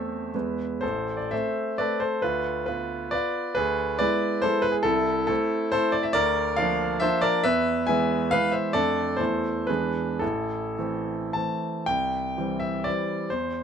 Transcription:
0.00 0.34 E2 soft
0.00 0.30 A3 soft
0.00 0.30 C4 soft
0.00 0.30 A4 soft
0.00 0.58 E5 medium
0.34 0.82 E2 soft
0.34 0.79 G#3 soft
0.34 0.80 B3 soft
0.34 0.80 B4 soft
0.81 1.31 A1 soft
0.81 1.17 A4 medium
0.81 1.18 C5 medium
1.17 1.31 D5 medium
1.31 1.76 A3 soft
1.31 1.76 C4 soft
1.31 1.76 A4 soft
1.31 1.76 C5 medium
1.31 1.79 E5 medium
1.78 2.19 A3 soft
1.78 2.19 C4 soft
1.78 2.00 A4 soft
1.78 2.00 B4 medium
1.78 2.01 D5 medium
2.00 2.21 A4 medium
2.00 2.22 C5 medium
2.22 2.67 D2 soft
2.22 2.65 F4 medium
2.22 2.65 B4 medium
2.66 3.09 B3 soft
2.66 3.09 F4 medium
2.66 3.11 B4 medium
3.11 3.53 B3 soft
3.11 3.53 F4 soft
3.11 3.53 B4 medium
3.11 3.56 D5 medium
3.55 4.00 D2 medium
3.55 3.98 G#4 medium
3.55 3.98 B4 medium
3.99 4.40 G#3 soft
3.99 4.41 B3 soft
3.99 4.41 E4 medium
3.99 4.41 B4 medium
3.99 4.43 D5 medium
4.42 4.81 G#3 soft
4.42 4.82 B3 soft
4.42 4.82 E4 soft
4.42 4.63 A4 medium
4.42 4.64 C5 medium
4.62 4.74 B4 medium
4.72 4.84 G#4 medium
4.83 5.28 C2 medium
4.83 5.26 E4 medium
4.83 5.25 A4 medium
5.27 5.69 A3 soft
5.27 5.69 C4 soft
5.27 5.69 E4 medium
5.27 5.71 A4 medium
5.72 6.11 A3 soft
5.72 6.11 C4 soft
5.72 6.12 E4 soft
5.72 5.92 A4 medium
5.72 5.93 C5 loud
5.92 6.04 D5 medium
6.03 6.14 E5 medium
6.13 6.57 D2 medium
6.13 6.55 A#4 medium
6.13 6.56 D5 loud
6.56 6.98 F3 medium
6.56 6.98 A#3 medium
6.56 6.98 D4 medium
6.56 6.98 D5 medium
6.56 7.01 F5 medium
7.00 7.40 F3 soft
7.00 7.41 A#3 soft
7.00 7.41 D4 soft
7.00 7.22 C5 medium
7.00 7.22 E5 loud
7.21 7.43 A#4 medium
7.21 7.44 D5 medium
7.43 7.88 E2 medium
7.43 7.85 B4 medium
7.43 7.86 E5 loud
7.87 8.29 E3 soft
7.87 8.29 G#3 medium
7.87 8.29 B3 medium
7.87 8.30 E5 medium
7.87 8.32 G#5 medium
8.31 8.71 E3 soft
8.31 8.71 G#3 soft
8.31 8.71 B3 soft
8.31 8.52 B4 medium
8.31 8.53 F5 loud
8.51 8.73 C5 medium
8.51 8.73 E5 medium
8.73 9.18 F2 medium
8.73 9.15 A3 soft
8.73 9.16 D4 soft
8.73 9.16 A4 medium
8.73 9.19 D5 medium
9.17 9.67 E2 soft
9.17 9.64 E3 soft
9.17 9.65 A3 soft
9.17 9.65 E4 soft
9.17 9.64 A4 medium
9.17 9.67 C5 medium
9.67 10.20 E2 soft
9.67 10.18 E3 soft
9.67 10.18 G#3 soft
9.67 10.18 D4 soft
9.67 10.18 G#4 medium
9.67 10.20 B4 medium
10.19 10.77 A1 soft
10.19 11.31 E4 soft
10.19 11.34 A4 medium
10.78 11.31 E3 soft
10.78 11.32 A3 soft
10.78 11.32 C4 soft
11.33 11.85 E3 soft
11.33 11.85 A3 soft
11.33 11.85 C4 soft
11.33 11.88 A5 medium
11.86 12.36 C2 soft
11.86 12.61 G5 medium
12.37 12.82 E3 soft
12.37 12.82 G3 soft
12.37 12.83 C4 soft
12.60 12.85 E5 medium
12.84 13.28 E3 soft
12.84 13.28 G3 soft
12.84 13.28 C4 soft
12.84 13.31 D5 medium
13.30 13.63 E2 soft
13.30 13.63 C5 medium

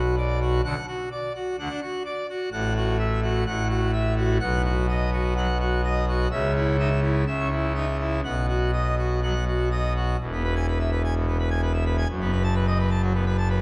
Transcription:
0.00 0.61 B1 medium
0.00 0.61 B2 medium
0.00 0.15 F#4 medium
0.17 0.39 D5 medium
0.41 0.61 F#4 medium
0.64 0.75 D2 medium
0.64 0.75 D3 medium
0.64 0.86 F#5 loud
0.88 1.09 F#4 medium
1.11 1.32 D5 medium
1.35 1.56 F#4 medium
1.58 1.68 D2 medium
1.58 1.68 D3 medium
1.58 1.80 F#5 medium
1.70 1.80 D4 medium
1.81 2.03 F#4 medium
2.05 2.26 D5 medium
2.29 2.49 F#4 medium
2.52 3.45 A1 medium
2.52 3.44 A2 medium
2.52 2.73 F#5 loud
2.76 2.97 F#4 medium
2.99 3.20 E5 medium
3.23 3.44 F#4 medium
3.46 4.38 A1 medium
3.46 4.38 A2 medium
3.46 3.67 F#5 medium
3.70 3.91 F#4 medium
3.93 4.15 E5 medium
4.17 4.37 F#4 medium
4.40 6.27 B1 loud
4.40 6.27 B2 medium
4.40 4.62 F#5 loud
4.65 4.86 F#4 medium
4.89 5.10 D#5 medium
5.12 5.33 F#4 medium
5.37 5.47 F#3 medium
5.37 5.58 F#5 medium
5.60 5.81 F#4 medium
5.84 6.05 D#5 medium
6.08 6.28 F#4 medium
6.31 7.25 C#2 medium
6.31 7.25 C#3 loud
6.31 6.52 E5 loud
6.56 6.76 E4 medium
6.79 6.89 D#4 medium
6.79 7.00 E5 medium
7.03 7.24 E4 medium
7.27 8.21 C#2 medium
7.27 8.21 C#3 medium
7.27 7.48 E5 medium
7.39 7.50 C#4 medium
7.51 7.73 E4 medium
7.75 7.85 D#4 medium
7.75 7.97 E5 medium
7.99 8.20 E4 medium
8.24 10.16 B1 medium
8.24 10.16 B2 medium
8.24 8.46 F#5 loud
8.49 8.71 F#4 medium
8.73 8.95 D#5 medium
8.98 9.20 F#4 medium
9.23 9.33 F#3 medium
9.23 9.44 F#5 medium
9.47 9.69 F#4 medium
9.71 9.93 D#5 medium
9.96 10.17 F#4 medium
10.20 12.05 E1 medium
10.20 12.05 E2 medium
10.32 10.43 B3 medium
10.44 10.54 B4 medium
10.55 10.66 G#5 loud
10.68 10.78 B4 medium
10.80 10.90 E5 medium
10.92 11.02 B4 medium
11.04 11.14 G#5 medium
11.16 11.26 B2 medium
11.27 11.37 B3 medium
11.39 11.49 B4 medium
11.50 11.61 G#5 medium
11.62 11.72 B4 medium
11.74 11.84 E5 medium
11.86 11.96 B4 medium
11.97 12.07 G#5 medium
12.09 13.62 F#1 medium
12.09 13.62 F#2 medium
12.21 12.31 B3 medium
12.32 12.43 B4 medium
12.44 12.54 A5 medium
12.55 12.66 B4 medium
12.67 12.78 D#5 medium
12.79 12.90 B4 medium
12.91 13.01 A5 medium
13.02 13.13 F#3 medium
13.14 13.25 B3 medium
13.26 13.37 B4 medium
13.38 13.48 A5 medium
13.49 13.60 B4 medium

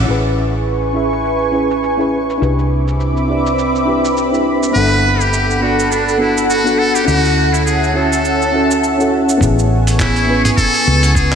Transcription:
0.00 0.10 A3 medium
0.00 0.90 C#4 medium
0.06 0.91 E4 medium
0.06 0.93 G#4 medium
0.06 2.39 B4 medium
0.06 2.39 G#5 medium
0.06 2.39 C#6 medium
0.06 shaker medium
0.10 0.94 B4 medium
0.25 shaker soft
0.53 shaker medium
0.67 shaker soft
0.83 shaker soft
0.93 1.50 C#4 medium
0.93 1.51 E4 medium
0.93 1.51 G#4 medium
0.93 1.52 E5 medium
1.12 shaker medium
1.25 shaker soft
1.41 shaker soft
1.52 1.95 C#4 medium
1.52 1.95 E4 medium
1.52 1.95 G#4 medium
1.52 1.96 B4 medium
1.71 shaker medium
1.83 shaker medium
1.97 2.37 C#4 medium
1.97 2.38 E4 medium
1.97 2.38 G#4 medium
1.97 2.39 B4 medium
1.97 shaker soft
2.30 shaker medium
2.38 4.72 C2 medium
2.38 3.24 D4 medium
2.38 3.25 E4 medium
2.38 4.72 D6 medium
2.42 4.72 C4 medium
2.42 3.26 G4 medium
2.42 3.27 B4 medium
2.42 4.72 E5 medium
2.42 7.04 B5 medium
2.42 shaker medium
2.59 shaker soft
2.88 shaker medium
3.00 shaker medium
3.17 shaker soft
3.28 3.84 D4 medium
3.28 3.84 E4 medium
3.28 3.85 G4 medium
3.28 3.86 D5 medium
3.46 shaker medium
3.59 shaker medium
3.75 shaker soft
3.85 4.28 D4 medium
3.85 4.28 E4 medium
3.85 4.29 G4 medium
3.85 4.30 B4 medium
4.05 shaker medium
4.17 shaker medium
4.31 4.71 D4 medium
4.31 4.71 E4 medium
4.31 4.72 G4 medium
4.31 4.72 B4 medium
4.31 shaker soft
4.63 shaker medium
4.71 7.05 G1 medium
4.71 5.57 B3 medium
4.71 5.58 D4 medium
4.71 7.05 A4 medium
4.71 5.22 B4 loud
4.71 9.37 F#5 medium
4.76 5.60 A4 medium
4.76 5.59 F#5 medium
4.76 shaker soft
4.92 shaker soft
5.21 5.64 G4 medium
5.21 shaker medium
5.33 shaker medium
5.50 shaker soft
5.60 6.17 B3 medium
5.60 6.17 D4 medium
5.60 5.93 F#4 medium
5.60 6.18 F#4 medium
5.60 6.18 D5 medium
5.79 shaker medium
5.91 6.20 D4 medium
5.91 shaker medium
6.08 shaker soft
6.18 6.61 B3 medium
6.18 6.61 D4 medium
6.18 6.47 E4 medium
6.18 6.62 F#4 medium
6.18 6.62 A4 medium
6.37 shaker medium
6.49 6.80 F#4 medium
6.49 shaker medium
6.64 7.03 B3 medium
6.64 7.04 D4 medium
6.64 7.05 F#4 medium
6.64 7.05 A4 medium
6.64 shaker soft
6.79 6.96 A4 medium
6.95 7.06 G4 medium
6.95 shaker medium
7.04 9.38 D2 medium
7.04 7.90 C#4 medium
7.04 7.91 E4 medium
7.04 7.54 F#4 medium
7.08 9.39 C#4 medium
7.08 7.92 F#4 medium
7.08 7.93 A4 medium
7.08 9.39 E5 medium
7.08 9.38 A5 medium
7.08 shaker medium
7.25 shaker soft
7.53 7.65 E4 medium
7.53 shaker medium
7.65 7.93 G#4 medium
7.65 shaker medium
7.84 shaker soft
7.93 8.50 C#4 medium
7.93 8.50 E4 medium
7.93 8.51 F#4 medium
7.93 9.07 A4 medium
7.93 8.51 C#5 medium
8.13 shaker medium
8.25 shaker soft
8.42 shaker soft
8.52 8.94 C#4 medium
8.52 8.95 E4 medium
8.52 8.95 F#4 medium
8.52 8.96 A4 medium
8.71 shaker medium
8.84 shaker medium
8.98 9.37 C#4 medium
8.98 9.37 E4 medium
8.98 9.38 F#4 medium
8.98 9.39 A4 medium
8.98 shaker soft
9.29 shaker medium
9.37 10.50 A1 loud
9.37 10.23 B3 medium
9.37 11.35 B3 medium
9.37 10.24 C#4 medium
9.37 11.35 G#5 medium
9.37 11.35 C#6 medium
9.37 kick loud
9.42 10.25 E4 medium
9.42 10.26 G#4 loud
9.42 shaker medium
9.59 shaker soft
9.87 open hi-hat medium
9.87 shaker medium
9.99 10.42 E4 medium
9.99 kick loud
9.99 clap medium
9.99 shaker medium
10.16 open hi-hat soft
10.16 shaker soft
10.27 10.83 B3 medium
10.27 10.84 C#4 medium
10.27 10.84 E4 medium
10.27 10.85 B4 medium
10.44 10.50 G#4 loud
10.44 mid tom medium
10.44 open hi-hat medium
10.44 shaker medium
10.57 11.16 A4 loud
10.57 kick loud
10.57 shaker medium
10.74 open hi-hat soft
10.74 shaker soft
10.87 11.35 C#2 loud
11.03 open hi-hat medium
11.03 shaker medium
11.15 11.35 G#4 medium
11.15 kick loud
11.15 shaker medium

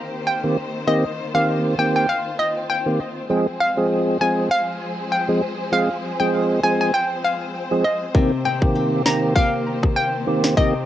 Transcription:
0.00 3.26 D#3 medium
0.00 3.26 A#3 medium
0.00 10.86 C4 medium
0.00 0.85 G4 medium
0.00 3.26 C5 medium
0.00 0.11 F5 loud
0.27 0.71 G5 medium
0.43 0.57 D#3 medium
0.43 0.57 A#3 medium
0.43 0.57 C4 medium
0.43 0.57 G4 medium
0.87 1.04 D#3 medium
0.87 1.04 A#3 medium
0.87 1.04 C4 medium
0.87 3.27 F4 medium
0.87 1.04 G4 medium
0.87 1.14 D#5 loud
1.34 1.75 D#3 medium
1.34 1.75 A#3 medium
1.34 1.75 C4 medium
1.34 1.75 G4 medium
1.34 1.46 F5 medium
1.78 2.06 D#3 medium
1.78 2.07 A#3 medium
1.78 2.07 C4 medium
1.78 2.07 G4 medium
1.78 1.93 G5 medium
1.96 2.07 G5 medium
2.09 2.24 F5 medium
2.39 2.54 D#5 medium
2.70 3.14 G5 medium
2.86 2.99 D#3 medium
2.86 3.00 A#3 medium
2.86 3.00 C4 medium
2.86 3.00 G4 medium
3.29 3.47 F3 medium
3.29 8.11 F3 medium
3.29 3.47 G#3 medium
3.29 8.11 G#3 medium
3.29 3.47 C4 medium
3.29 3.47 G#4 loud
3.29 8.11 G#4 medium
3.29 10.86 C5 medium
3.60 3.75 F5 medium
3.77 4.18 F3 medium
3.77 4.18 G#3 medium
3.77 4.18 C4 medium
3.77 4.18 G#4 medium
4.21 4.49 F3 medium
4.21 4.49 G#3 medium
4.21 4.49 C4 medium
4.21 4.49 G#4 medium
4.21 4.47 G#5 medium
4.51 4.96 F5 loud
5.12 5.56 G5 medium
5.28 5.42 F3 medium
5.28 5.42 G#3 medium
5.28 5.42 C4 medium
5.28 5.42 G#4 medium
5.72 5.89 F3 medium
5.72 5.89 G#3 medium
5.72 5.89 C4 medium
5.72 5.90 G#4 loud
5.72 5.99 F5 loud
6.20 6.60 F3 medium
6.20 6.60 G#3 medium
6.20 6.60 C4 medium
6.20 6.60 G#4 medium
6.20 6.31 G5 medium
6.63 6.91 F3 medium
6.63 6.92 G#3 medium
6.63 6.92 C4 medium
6.63 6.92 G#4 medium
6.63 6.78 G#5 medium
6.81 6.92 G#5 medium
6.94 7.09 G5 medium
7.24 7.39 F5 medium
7.71 7.84 F3 medium
7.71 7.84 G#3 medium
7.71 7.85 C4 medium
7.71 7.85 G#4 medium
7.84 7.99 D#5 medium
8.14 10.56 C3 medium
8.14 8.32 D#3 medium
8.14 10.86 D#3 medium
8.14 10.86 A#3 medium
8.14 8.32 A#3 medium
8.14 8.32 C4 medium
8.14 10.55 G4 medium
8.14 8.32 G4 loud
8.14 8.74 G4 medium
8.14 kick loud
8.45 9.36 C4 medium
8.45 8.60 G5 medium
8.61 9.02 D#3 medium
8.61 9.02 A#3 medium
8.61 9.02 C4 medium
8.61 9.02 G4 medium
8.61 kick medium
8.75 9.36 G4 medium
9.05 9.34 D#3 medium
9.05 9.34 A#3 medium
9.05 9.34 C4 medium
9.05 9.34 G4 medium
9.05 9.32 A#5 medium
9.05 snare loud
9.36 10.86 A#3 medium
9.36 10.86 C4 medium
9.36 10.57 G4 medium
9.36 9.80 F5 loud
9.36 kick loud
9.83 kick loud
9.83 cross-stick medium
9.96 10.41 G5 medium
10.27 10.55 D#3 medium
10.27 10.55 A#3 medium
10.27 10.55 C4 medium
10.27 10.55 G4 medium
10.44 snare loud
10.57 10.86 C3 medium
10.57 10.74 D#3 medium
10.57 10.74 A#3 medium
10.57 10.74 C4 medium
10.57 10.86 F4 medium
10.57 10.74 G4 loud
10.57 10.86 G4 medium
10.57 10.84 D#5 loud
10.57 kick loud

